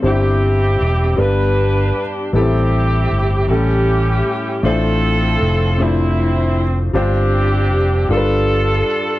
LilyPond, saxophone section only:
\new Staff \with { instrumentName = "Saxophone section" } { \time 6/8 \key g \mixolydian \tempo 4. = 52 << { g'4. b'4 r8 | g'4. g'4. | a'4. e'4 r8 | g'4. a'4. | } \\ { <c' e'>4. <d' g'>4. | <c' e'>4. <cis' e'>4. | <c' f'>4. c'4. | <c' d'>4. <d' f'>4. | } >> }